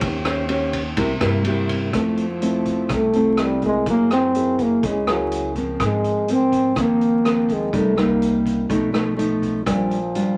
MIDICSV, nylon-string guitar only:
0, 0, Header, 1, 2, 480
1, 0, Start_track
1, 0, Tempo, 482315
1, 12, Time_signature, 4, 2, 24, 8
1, 10324, End_track
2, 0, Start_track
2, 0, Title_t, "Nylon-string guitar"
2, 0, Program_c, 0, 24
2, 0, Note_on_c, 0, 61, 71
2, 0, Note_on_c, 0, 67, 60
2, 0, Note_on_c, 0, 72, 74
2, 9, Note_on_c, 0, 51, 53
2, 215, Note_off_c, 0, 61, 0
2, 218, Note_off_c, 0, 67, 0
2, 219, Note_off_c, 0, 72, 0
2, 249, Note_on_c, 0, 61, 57
2, 256, Note_on_c, 0, 67, 56
2, 256, Note_on_c, 0, 72, 72
2, 451, Note_off_c, 0, 61, 0
2, 454, Note_off_c, 0, 67, 0
2, 455, Note_off_c, 0, 72, 0
2, 489, Note_on_c, 0, 61, 63
2, 494, Note_on_c, 0, 67, 53
2, 497, Note_on_c, 0, 72, 68
2, 812, Note_off_c, 0, 61, 0
2, 813, Note_off_c, 0, 67, 0
2, 815, Note_off_c, 0, 72, 0
2, 944, Note_off_c, 0, 51, 0
2, 962, Note_on_c, 0, 48, 66
2, 966, Note_on_c, 0, 58, 65
2, 971, Note_on_c, 0, 64, 67
2, 972, Note_on_c, 0, 67, 74
2, 1107, Note_off_c, 0, 58, 0
2, 1108, Note_off_c, 0, 64, 0
2, 1111, Note_off_c, 0, 67, 0
2, 1199, Note_on_c, 0, 58, 68
2, 1203, Note_on_c, 0, 64, 62
2, 1207, Note_on_c, 0, 67, 69
2, 1405, Note_off_c, 0, 58, 0
2, 1407, Note_off_c, 0, 64, 0
2, 1408, Note_off_c, 0, 67, 0
2, 1457, Note_on_c, 0, 58, 55
2, 1462, Note_on_c, 0, 64, 62
2, 1464, Note_on_c, 0, 67, 65
2, 1893, Note_off_c, 0, 58, 0
2, 1895, Note_off_c, 0, 64, 0
2, 1897, Note_off_c, 0, 67, 0
2, 1901, Note_off_c, 0, 48, 0
2, 1925, Note_on_c, 0, 53, 48
2, 1925, Note_on_c, 0, 57, 49
2, 1928, Note_on_c, 0, 60, 49
2, 1936, Note_on_c, 0, 64, 47
2, 2234, Note_off_c, 0, 57, 0
2, 2237, Note_off_c, 0, 60, 0
2, 2239, Note_off_c, 0, 64, 0
2, 2405, Note_on_c, 0, 57, 52
2, 2410, Note_on_c, 0, 60, 48
2, 2417, Note_on_c, 0, 64, 54
2, 2861, Note_off_c, 0, 53, 0
2, 2888, Note_on_c, 0, 48, 58
2, 3087, Note_off_c, 0, 57, 0
2, 3090, Note_off_c, 0, 60, 0
2, 3091, Note_off_c, 0, 64, 0
2, 3132, Note_on_c, 0, 57, 52
2, 3140, Note_on_c, 0, 60, 65
2, 3145, Note_on_c, 0, 64, 63
2, 3570, Note_off_c, 0, 57, 0
2, 3575, Note_off_c, 0, 60, 0
2, 3576, Note_off_c, 0, 64, 0
2, 3613, Note_on_c, 0, 58, 51
2, 3617, Note_on_c, 0, 64, 53
2, 3624, Note_on_c, 0, 68, 59
2, 3823, Note_off_c, 0, 48, 0
2, 3851, Note_on_c, 0, 54, 53
2, 4291, Note_off_c, 0, 64, 0
2, 4292, Note_off_c, 0, 58, 0
2, 4296, Note_off_c, 0, 68, 0
2, 4329, Note_on_c, 0, 58, 45
2, 4336, Note_on_c, 0, 64, 53
2, 4337, Note_on_c, 0, 68, 54
2, 4784, Note_off_c, 0, 54, 0
2, 4808, Note_on_c, 0, 49, 49
2, 5009, Note_off_c, 0, 58, 0
2, 5011, Note_off_c, 0, 64, 0
2, 5013, Note_off_c, 0, 68, 0
2, 5051, Note_on_c, 0, 58, 52
2, 5056, Note_on_c, 0, 64, 57
2, 5060, Note_on_c, 0, 68, 65
2, 5490, Note_off_c, 0, 58, 0
2, 5493, Note_off_c, 0, 64, 0
2, 5494, Note_off_c, 0, 68, 0
2, 5535, Note_on_c, 0, 53, 59
2, 5538, Note_on_c, 0, 58, 54
2, 5544, Note_on_c, 0, 60, 63
2, 5743, Note_off_c, 0, 49, 0
2, 5769, Note_on_c, 0, 44, 53
2, 6212, Note_off_c, 0, 53, 0
2, 6213, Note_off_c, 0, 58, 0
2, 6217, Note_off_c, 0, 60, 0
2, 6259, Note_on_c, 0, 53, 49
2, 6262, Note_on_c, 0, 58, 54
2, 6268, Note_on_c, 0, 60, 63
2, 6695, Note_off_c, 0, 53, 0
2, 6695, Note_off_c, 0, 58, 0
2, 6699, Note_off_c, 0, 60, 0
2, 6704, Note_off_c, 0, 44, 0
2, 6719, Note_on_c, 0, 53, 52
2, 6724, Note_on_c, 0, 51, 52
2, 6728, Note_on_c, 0, 58, 60
2, 6730, Note_on_c, 0, 60, 57
2, 7165, Note_off_c, 0, 53, 0
2, 7168, Note_off_c, 0, 58, 0
2, 7170, Note_off_c, 0, 60, 0
2, 7206, Note_on_c, 0, 53, 50
2, 7212, Note_on_c, 0, 58, 59
2, 7218, Note_on_c, 0, 60, 63
2, 7662, Note_off_c, 0, 51, 0
2, 7668, Note_off_c, 0, 53, 0
2, 7669, Note_off_c, 0, 58, 0
2, 7673, Note_off_c, 0, 60, 0
2, 7691, Note_on_c, 0, 48, 47
2, 7691, Note_on_c, 0, 55, 55
2, 7697, Note_on_c, 0, 58, 45
2, 7702, Note_on_c, 0, 63, 61
2, 7890, Note_off_c, 0, 55, 0
2, 7893, Note_off_c, 0, 58, 0
2, 7896, Note_off_c, 0, 63, 0
2, 7923, Note_on_c, 0, 55, 57
2, 7928, Note_on_c, 0, 58, 55
2, 7934, Note_on_c, 0, 63, 58
2, 8625, Note_off_c, 0, 48, 0
2, 8626, Note_off_c, 0, 55, 0
2, 8629, Note_off_c, 0, 58, 0
2, 8630, Note_off_c, 0, 63, 0
2, 8648, Note_on_c, 0, 53, 50
2, 8652, Note_on_c, 0, 47, 51
2, 8657, Note_on_c, 0, 57, 55
2, 8662, Note_on_c, 0, 63, 60
2, 8849, Note_off_c, 0, 53, 0
2, 8853, Note_off_c, 0, 57, 0
2, 8854, Note_off_c, 0, 63, 0
2, 8882, Note_on_c, 0, 53, 57
2, 8886, Note_on_c, 0, 57, 60
2, 8892, Note_on_c, 0, 63, 61
2, 9087, Note_off_c, 0, 53, 0
2, 9087, Note_off_c, 0, 57, 0
2, 9091, Note_off_c, 0, 63, 0
2, 9123, Note_on_c, 0, 53, 53
2, 9127, Note_on_c, 0, 57, 56
2, 9135, Note_on_c, 0, 63, 57
2, 9567, Note_off_c, 0, 53, 0
2, 9569, Note_off_c, 0, 57, 0
2, 9571, Note_off_c, 0, 63, 0
2, 9587, Note_off_c, 0, 47, 0
2, 9613, Note_on_c, 0, 46, 52
2, 9616, Note_on_c, 0, 55, 45
2, 9618, Note_on_c, 0, 62, 54
2, 9626, Note_on_c, 0, 65, 50
2, 9920, Note_off_c, 0, 55, 0
2, 9922, Note_off_c, 0, 62, 0
2, 9926, Note_off_c, 0, 65, 0
2, 10098, Note_on_c, 0, 55, 57
2, 10106, Note_on_c, 0, 62, 53
2, 10107, Note_on_c, 0, 65, 52
2, 10324, Note_off_c, 0, 46, 0
2, 10324, Note_off_c, 0, 55, 0
2, 10324, Note_off_c, 0, 62, 0
2, 10324, Note_off_c, 0, 65, 0
2, 10324, End_track
0, 0, End_of_file